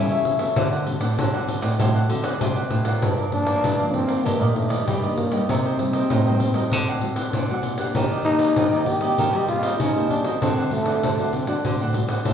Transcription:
Already playing: C#3 E3 G3 C#4 E4
0.11 A4 C#5 E5, pandeiro
0.25 pandeiro
0.39 A3 C4 F#4 A4 C#5 E5, pandeiro
0.56 D3 D4 C5 D5 F#5, pandeiro
0.72 C5 D5 F#5, pandeiro
0.86 A3 C4 F#4, muted cavaquinho stroke, pandeiro
1.00 A2 C5 D5 F#5, pandeiro
1.17 A2 D3 D4 C5 D5 F#5, pandeiro
1.33 A3 C4 F#4 C5 D5 F#5, pandeiro
1.48 pandeiro
1.61 A2 C5 D5 F#5, pandeiro
1.78 A2 D3 A3 C4 D4 F#4 C5 D5 F#5, pandeiro
1.94 C5 D5 F#5, pandeiro
2.09 D3 A3 C4 F#4, muted cavaquinho stroke, pandeiro
2.22 C5 D5 F#5, pandeiro
2.40 A2 C3 A3 C4 D4 F#4 C5 D5 F#5, pandeiro
2.56 C5 D5 F#5, pandeiro
2.71 A2, pandeiro
2.85 D4 F4 A#4 C5 D5 F#5, pandeiro
3.02 G2 G4 A#4 D5 F5, pandeiro
3.17 A#4 D5 F5, pandeiro
3.32 F3 A#3 D4, muted cavaquinho stroke, pandeiro
3.46 A#4 D5 F5, pandeiro
3.63 G2 D3 G4 A#4 D5 F5, pandeiro
3.79 F3 A#3 D4 A#4 D5 F5, pandeiro
3.93 C4, pandeiro
4.07 D#3 A#3 D4 A#4 D5 F5, pandeiro
4.24 G2 A#3 D4 G4 D5 D#5, pandeiro
4.41 A#2 G4 D5 D#5, pandeiro
4.54 D#3 A3 D4, muted cavaquinho stroke, pandeiro
4.69 G4 D5 D#5, pandeiro
4.86 G2 G3 D4 G4 D5 D#5, pandeiro
5.02 D#3 A#3 D4 G4 D5 D#5, pandeiro
5.16 A#3, pandeiro
5.31 G3 A#3 D#4 G4 D5 D#5, pandeiro
5.48 C3 C4 D#4 A#4 C5 D#5, pandeiro
5.65 A#4 C5 D#5, pandeiro
5.79 G3 A#3 D#4, muted cavaquinho stroke, pandeiro
5.93 A#4 C5 D#5, pandeiro
6.10 G2 A2 D#4 A#4 C5 D#5, pandeiro
6.26 G3 A#3 D#4 A#4 C5 D#5, pandeiro
6.40 pandeiro
6.54 A3 C4 F#4 A#4 C5 D#5, pandeiro
6.71 D3 D4 C5 D5 F#5, pandeiro
6.88 A2 C5 D5 F#5, pandeiro
7.01 A3 C4 F#4, muted cavaquinho stroke, pandeiro
7.16 C5 D5 F#5, pandeiro
7.33 A#2 D4 C5 D5 F#5, pandeiro
7.50 A3 C4 F#4 C5 D5 F#5, pandeiro
7.63 pandeiro
7.78 A#3 D4 G4 C5 D5 F#5, pandeiro
7.95 D#3 D4 G4 D5 D#5, pandeiro
8.11 G4 D5 D#5, pandeiro
8.25 A#3 D#4 G4, muted cavaquinho stroke, pandeiro
8.39 G4 D5 D#5, pandeiro
8.56 A#2 D#3 D4 G4 D5 D#5, pandeiro
8.73 A#3 D4 G4 D5 D#5, pandeiro
8.86 G4, pandeiro
9.01 A#3 C4 G4 D5 D#5, pandeiro
9.18 D#3 D#4 A#4 C5 D#5, pandeiro
9.34 G3 A#4 C5 D#5, pandeiro
9.48 A#3 C4 F4 G4, muted cavaquinho stroke, pandeiro
9.63 A#4 C5 D#5, pandeiro
9.80 C#3 D#3 D#4 A#4 C5 D#5, pandeiro
9.96 A#3 C4 G4 A#4 C5 D#5, pandeiro
10.09 D4, pandeiro
10.24 A3 C4 F#4 A#4 C5 D#5, pandeiro
10.41 D3 C4 D4 C5 D5 F#5, pandeiro
10.57 C5 D5 F#5, pandeiro
10.71 A3 C4 F#4, muted cavaquinho stroke, pandeiro
10.86 C5 D5 F#5, pandeiro
11.03 A2 D3 D4 C5 D5 F#5, pandeiro
11.19 A3 C4 F#4 C5 D5 F#5, pandeiro
11.33 C4, pandeiro
11.47 A3 C4 D4 F#4 C5 D5 F#5, pandeiro
11.65 D3 A3 C4 D4 F#4 C5 D5 F#5, pandeiro
11.80 A2 C5 D5 F#5, pandeiro
11.94 A3 C4 F#4, muted cavaquinho stroke, pandeiro
12.09 C5 D5 F#5, pandeiro
12.25 A2 D4 C5 D5 F#5, pandeiro

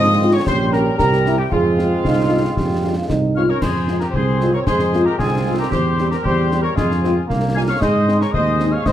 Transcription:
Already playing: G#2 F3 C4 D#5 D#6
0.22 G#3 C4 F4
0.33 C#5 C#6
0.46 A#1 G3 C#4 G4 C5 C6, concert bass drum, snare
0.73 G3 C#4 G4 A#4 A#5, snare
0.98 C2 C4 G4 A#4 A#5, concert bass drum, snare
1.13 snare
1.26 G3 C4 E4, snare
1.38 G4 G5
1.50 F2 G#3 C4 F4 G#4 F5, concert bass drum
1.78 G#3 C4 F4, snare
2.04 C2 D#4, concert bass drum, snare
2.31 G#3 C4 F4
2.44 F4
2.57 F2 G4, concert bass drum, snare
2.84 G#3 C4 F4
2.97 F4
3.08 C2 D#4, concert bass drum, snare
3.35 G#3 C4 F4 C#5 F5 F6
3.49 C#4 A#4 C#5 C#6
3.61 F2 G#4 C5 C6, concert bass drum, snare, crash
3.88 G#3 C4 F4, snare
4.00 G4 A#4 A#5, snare
4.11 C2 C4 C5 C6, concert bass drum
4.15 G#4
4.41 G#3 C4 F4, snare
4.53 A#4 C#5 C#6
4.66 F2 G#3 G#4 C5 C6, concert bass drum, snare
4.80 snare
4.93 G#3 C4 F4, snare
5.05 G4 A#4 A#5
5.18 C2 C4 F4 G#4 G#5, concert bass drum, snare
5.47 G#3 C4 F4
5.59 G4 A#4 A#5
5.70 E2 G4 C5 C6, concert bass drum, snare
5.98 G3 C4 G4, snare
6.09 G4 A#4 A#5, snare
6.23 E2 G3 G4 C5 C6, concert bass drum
6.52 G3 C4 G4, snare
6.62 A#4 C#5 C#6
6.75 F2 G#3 F4 G#4 G#5, concert bass drum, snare
6.91 snare
7.01 G#3 C4 F4, snare
7.27 C2 A#3, concert bass drum, snare
7.54 G#3 C4 F4 F5 G#5 G#6
7.68 C#5 F5 F6
7.80 G#2 G#3 C5 D#5 D#6, concert bass drum, snare, crash
8.08 G#3 C4 D#4, snare
8.20 A#4 C#5 C#6, snare
8.32 D#2 C5 D#5 D#6, concert bass drum
8.60 G#3 C4 D#4, snare
8.72 C#5 F5 F6
8.85 G#2 C4 C5 D#5 D#6, concert bass drum, snare

